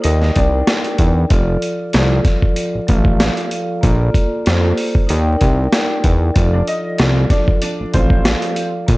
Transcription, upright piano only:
0, 0, Header, 1, 2, 480
1, 0, Start_track
1, 0, Tempo, 631579
1, 993, Time_signature, 4, 2, 24, 8
1, 6819, End_track
2, 0, Start_track
2, 0, Title_t, "Upright piano"
2, 0, Program_c, 0, 0
2, 31, Note_on_c, 0, 75, 79
2, 38, Note_on_c, 0, 63, 62
2, 248, Note_off_c, 0, 75, 0
2, 252, Note_off_c, 0, 63, 0
2, 279, Note_on_c, 0, 74, 78
2, 285, Note_on_c, 0, 62, 65
2, 492, Note_off_c, 0, 74, 0
2, 496, Note_off_c, 0, 62, 0
2, 4968, Note_on_c, 0, 74, 74
2, 4973, Note_on_c, 0, 62, 57
2, 5064, Note_off_c, 0, 74, 0
2, 5067, Note_off_c, 0, 62, 0
2, 5074, Note_on_c, 0, 75, 86
2, 5080, Note_on_c, 0, 63, 63
2, 5290, Note_off_c, 0, 75, 0
2, 5293, Note_off_c, 0, 63, 0
2, 5551, Note_on_c, 0, 74, 87
2, 5557, Note_on_c, 0, 62, 70
2, 5670, Note_off_c, 0, 74, 0
2, 5674, Note_off_c, 0, 62, 0
2, 5790, Note_on_c, 0, 74, 80
2, 5796, Note_on_c, 0, 62, 61
2, 6007, Note_off_c, 0, 74, 0
2, 6011, Note_off_c, 0, 62, 0
2, 6031, Note_on_c, 0, 72, 77
2, 6037, Note_on_c, 0, 60, 63
2, 6248, Note_off_c, 0, 72, 0
2, 6251, Note_off_c, 0, 60, 0
2, 6819, End_track
0, 0, End_of_file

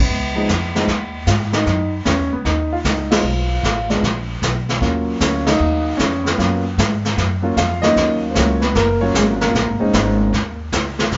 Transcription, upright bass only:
0, 0, Header, 1, 2, 480
1, 0, Start_track
1, 0, Key_signature, -6, "minor"
1, 0, Tempo, 393701
1, 109, Time_signature, 4, 2, 24, 8
1, 13620, End_track
2, 0, Start_track
2, 0, Title_t, "Upright bass"
2, 0, Program_c, 0, 32
2, 106, Note_on_c, 0, 37, 67
2, 573, Note_off_c, 0, 37, 0
2, 593, Note_on_c, 0, 41, 82
2, 1056, Note_off_c, 0, 41, 0
2, 1068, Note_on_c, 0, 39, 75
2, 1533, Note_off_c, 0, 39, 0
2, 1544, Note_on_c, 0, 44, 75
2, 2011, Note_off_c, 0, 44, 0
2, 2023, Note_on_c, 0, 42, 76
2, 2490, Note_off_c, 0, 42, 0
2, 2508, Note_on_c, 0, 40, 81
2, 2673, Note_off_c, 0, 40, 0
2, 2673, Note_on_c, 0, 39, 48
2, 2822, Note_off_c, 0, 39, 0
2, 2830, Note_on_c, 0, 37, 49
2, 2977, Note_off_c, 0, 37, 0
2, 2987, Note_on_c, 0, 39, 82
2, 3452, Note_off_c, 0, 39, 0
2, 3469, Note_on_c, 0, 37, 68
2, 3933, Note_off_c, 0, 37, 0
2, 3941, Note_on_c, 0, 35, 74
2, 4409, Note_off_c, 0, 35, 0
2, 4431, Note_on_c, 0, 33, 84
2, 4894, Note_off_c, 0, 33, 0
2, 4908, Note_on_c, 0, 34, 80
2, 5372, Note_off_c, 0, 34, 0
2, 5389, Note_on_c, 0, 35, 76
2, 5853, Note_off_c, 0, 35, 0
2, 5865, Note_on_c, 0, 39, 73
2, 6331, Note_off_c, 0, 39, 0
2, 6345, Note_on_c, 0, 38, 80
2, 6811, Note_off_c, 0, 38, 0
2, 6824, Note_on_c, 0, 39, 88
2, 7291, Note_off_c, 0, 39, 0
2, 7303, Note_on_c, 0, 41, 78
2, 7770, Note_off_c, 0, 41, 0
2, 7784, Note_on_c, 0, 42, 74
2, 8251, Note_off_c, 0, 42, 0
2, 8261, Note_on_c, 0, 44, 80
2, 8729, Note_off_c, 0, 44, 0
2, 8741, Note_on_c, 0, 42, 76
2, 9209, Note_off_c, 0, 42, 0
2, 9223, Note_on_c, 0, 41, 68
2, 9691, Note_off_c, 0, 41, 0
2, 9704, Note_on_c, 0, 39, 83
2, 10171, Note_off_c, 0, 39, 0
2, 10186, Note_on_c, 0, 37, 84
2, 10652, Note_off_c, 0, 37, 0
2, 10665, Note_on_c, 0, 30, 85
2, 11132, Note_off_c, 0, 30, 0
2, 11151, Note_on_c, 0, 32, 76
2, 11615, Note_off_c, 0, 32, 0
2, 11630, Note_on_c, 0, 34, 79
2, 11789, Note_off_c, 0, 34, 0
2, 11789, Note_on_c, 0, 32, 62
2, 11948, Note_off_c, 0, 32, 0
2, 11955, Note_on_c, 0, 29, 66
2, 12100, Note_off_c, 0, 29, 0
2, 12109, Note_on_c, 0, 32, 95
2, 12574, Note_off_c, 0, 32, 0
2, 12595, Note_on_c, 0, 39, 86
2, 13057, Note_off_c, 0, 39, 0
2, 13077, Note_on_c, 0, 37, 89
2, 13538, Note_off_c, 0, 37, 0
2, 13549, Note_on_c, 0, 35, 78
2, 13620, Note_off_c, 0, 35, 0
2, 13620, End_track
0, 0, End_of_file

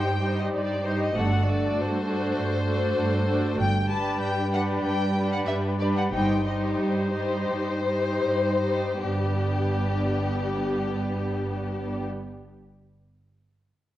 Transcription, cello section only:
0, 0, Header, 1, 2, 480
1, 0, Start_track
1, 0, Key_signature, 1, "major"
1, 0, Tempo, 610998
1, 896, Time_signature, 4, 2, 24, 8
1, 3293, Tempo, 633580
1, 4253, Tempo, 664452
1, 5213, Tempo, 722022
1, 6173, Tempo, 767263
1, 9763, End_track
2, 0, Start_track
2, 0, Title_t, "Cello section"
2, 0, Program_c, 0, 48
2, 0, Note_on_c, 0, 43, 51
2, 360, Note_off_c, 0, 43, 0
2, 417, Note_on_c, 0, 43, 56
2, 841, Note_off_c, 0, 43, 0
2, 897, Note_on_c, 0, 43, 57
2, 1320, Note_off_c, 0, 43, 0
2, 1368, Note_on_c, 0, 43, 47
2, 1794, Note_off_c, 0, 43, 0
2, 1858, Note_on_c, 0, 43, 52
2, 2277, Note_off_c, 0, 43, 0
2, 2333, Note_on_c, 0, 43, 60
2, 2753, Note_off_c, 0, 43, 0
2, 2809, Note_on_c, 0, 43, 56
2, 3234, Note_off_c, 0, 43, 0
2, 3294, Note_on_c, 0, 43, 52
2, 3712, Note_off_c, 0, 43, 0
2, 3772, Note_on_c, 0, 43, 56
2, 4196, Note_off_c, 0, 43, 0
2, 4257, Note_on_c, 0, 43, 58
2, 4676, Note_off_c, 0, 43, 0
2, 4740, Note_on_c, 0, 43, 54
2, 5159, Note_off_c, 0, 43, 0
2, 5218, Note_on_c, 0, 43, 51
2, 5623, Note_off_c, 0, 43, 0
2, 5677, Note_on_c, 0, 43, 47
2, 6112, Note_off_c, 0, 43, 0
2, 6173, Note_on_c, 0, 43, 43
2, 6611, Note_off_c, 0, 43, 0
2, 6666, Note_on_c, 0, 43, 41
2, 8557, Note_off_c, 0, 43, 0
2, 9763, End_track
0, 0, End_of_file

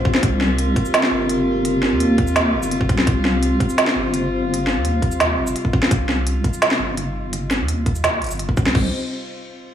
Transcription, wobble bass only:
0, 0, Header, 1, 2, 480
1, 0, Start_track
1, 0, Key_signature, -3, "minor"
1, 0, Tempo, 355030
1, 311, Time_signature, 4, 2, 24, 8
1, 13171, End_track
2, 0, Start_track
2, 0, Title_t, "Wobble bass"
2, 0, Program_c, 0, 39
2, 309, Note_on_c, 0, 36, 100
2, 1015, Note_off_c, 0, 36, 0
2, 1511, Note_on_c, 0, 31, 97
2, 2594, Note_on_c, 0, 39, 92
2, 2614, Note_off_c, 0, 31, 0
2, 3432, Note_on_c, 0, 31, 97
2, 3452, Note_off_c, 0, 39, 0
2, 3912, Note_on_c, 0, 36, 88
2, 3932, Note_off_c, 0, 31, 0
2, 4133, Note_off_c, 0, 36, 0
2, 4150, Note_on_c, 0, 36, 97
2, 4856, Note_off_c, 0, 36, 0
2, 5355, Note_on_c, 0, 31, 101
2, 6436, Note_on_c, 0, 39, 94
2, 6457, Note_off_c, 0, 31, 0
2, 7272, Note_on_c, 0, 31, 99
2, 7292, Note_off_c, 0, 39, 0
2, 7493, Note_off_c, 0, 31, 0
2, 7992, Note_on_c, 0, 36, 99
2, 8697, Note_off_c, 0, 36, 0
2, 9190, Note_on_c, 0, 31, 102
2, 10277, Note_on_c, 0, 39, 96
2, 10297, Note_off_c, 0, 31, 0
2, 11109, Note_on_c, 0, 31, 102
2, 11129, Note_off_c, 0, 39, 0
2, 11590, Note_on_c, 0, 36, 88
2, 11610, Note_off_c, 0, 31, 0
2, 11812, Note_off_c, 0, 36, 0
2, 11830, Note_on_c, 0, 36, 95
2, 12054, Note_off_c, 0, 36, 0
2, 13171, End_track
0, 0, End_of_file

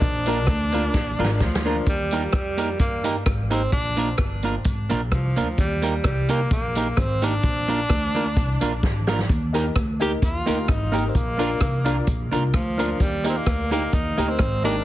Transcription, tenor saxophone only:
0, 0, Header, 1, 2, 480
1, 0, Start_track
1, 0, Key_signature, -3, "major"
1, 0, Tempo, 464037
1, 17, Time_signature, 4, 2, 24, 8
1, 15353, End_track
2, 0, Start_track
2, 0, Title_t, "Tenor saxophone"
2, 0, Program_c, 0, 66
2, 0, Note_on_c, 0, 62, 108
2, 1460, Note_off_c, 0, 62, 0
2, 1481, Note_on_c, 0, 53, 80
2, 1915, Note_off_c, 0, 53, 0
2, 1956, Note_on_c, 0, 55, 104
2, 2392, Note_off_c, 0, 55, 0
2, 2423, Note_on_c, 0, 55, 98
2, 2865, Note_off_c, 0, 55, 0
2, 2902, Note_on_c, 0, 58, 86
2, 3345, Note_off_c, 0, 58, 0
2, 3633, Note_on_c, 0, 60, 90
2, 3840, Note_off_c, 0, 60, 0
2, 3858, Note_on_c, 0, 62, 110
2, 4302, Note_off_c, 0, 62, 0
2, 5303, Note_on_c, 0, 53, 75
2, 5745, Note_off_c, 0, 53, 0
2, 5791, Note_on_c, 0, 55, 93
2, 6229, Note_off_c, 0, 55, 0
2, 6267, Note_on_c, 0, 55, 90
2, 6531, Note_on_c, 0, 58, 87
2, 6547, Note_off_c, 0, 55, 0
2, 6744, Note_off_c, 0, 58, 0
2, 6752, Note_on_c, 0, 58, 89
2, 7235, Note_on_c, 0, 60, 99
2, 7250, Note_off_c, 0, 58, 0
2, 7492, Note_on_c, 0, 62, 113
2, 7508, Note_off_c, 0, 60, 0
2, 9400, Note_off_c, 0, 62, 0
2, 10364, Note_on_c, 0, 67, 102
2, 10462, Note_off_c, 0, 67, 0
2, 10595, Note_on_c, 0, 65, 88
2, 11072, Note_on_c, 0, 63, 88
2, 11087, Note_off_c, 0, 65, 0
2, 11473, Note_on_c, 0, 60, 58
2, 11489, Note_off_c, 0, 63, 0
2, 11547, Note_on_c, 0, 58, 96
2, 11562, Note_off_c, 0, 60, 0
2, 12499, Note_off_c, 0, 58, 0
2, 12984, Note_on_c, 0, 53, 89
2, 13466, Note_on_c, 0, 55, 95
2, 13482, Note_off_c, 0, 53, 0
2, 13741, Note_off_c, 0, 55, 0
2, 13747, Note_on_c, 0, 60, 81
2, 13829, Note_on_c, 0, 58, 92
2, 13845, Note_off_c, 0, 60, 0
2, 14190, Note_off_c, 0, 58, 0
2, 14196, Note_on_c, 0, 58, 100
2, 14415, Note_on_c, 0, 63, 91
2, 14431, Note_off_c, 0, 58, 0
2, 14778, Note_on_c, 0, 60, 107
2, 14793, Note_off_c, 0, 63, 0
2, 15146, Note_off_c, 0, 60, 0
2, 15153, Note_on_c, 0, 62, 103
2, 15353, Note_off_c, 0, 62, 0
2, 15353, End_track
0, 0, End_of_file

